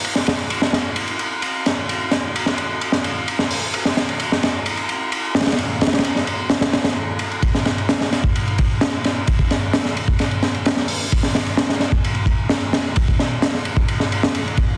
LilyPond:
\new DrumStaff \with { instrumentName = "Drums" } \drummode { \time 4/4 \tempo 4 = 130 cymr16 sn16 <cymr sn>16 cymr16 cymr16 sn16 <cymr sn>8 cymr16 cymr16 cymr8 cymr8 <cymr sn>8 | cymr8 <cymr sn>8 cymr16 sn16 cymr8 cymr16 sn16 cymr8 cymr16 sn16 hho8 | cymr16 sn16 <cymr sn>16 cymr16 cymr16 sn16 <cymr sn>8 cymr16 cymr16 cymr8 cymr8 <cymr sn>32 <cymr sn>32 <cymr sn>32 <cymr sn>32 | cymr8 <cymr sn>32 <cymr sn>32 <cymr sn>32 <cymr sn>32 cymr16 sn16 cymr8 <cymr sn>16 <cymr sn>16 <cymr sn>16 <cymr sn>16 r8 cymr16 cymr16 |
<bd cymr>16 sn16 <cymr sn>16 cymr16 <cymr sn>16 sn16 <cymr sn>16 bd16 cymr16 cymr16 <bd cymr>8 <cymr sn>8 <cymr sn>8 | <bd cymr>16 bd16 <cymr sn>8 <cymr sn>16 sn16 cymr16 bd16 <cymr sn>16 cymr16 <cymr sn>16 cymr16 <cymr sn>16 sn16 hho8 | <bd cymr>16 sn16 <cymr sn>16 cymr16 <cymr sn>16 sn16 <cymr sn>16 bd16 cymr16 cymr16 <bd cymr>8 <cymr sn>8 <cymr sn>8 | <bd cymr>16 bd16 <cymr sn>8 <cymr sn>16 sn16 cymr16 bd16 cymr16 sn16 cymr16 sn16 cymr16 cymr16 <bd cymr>8 | }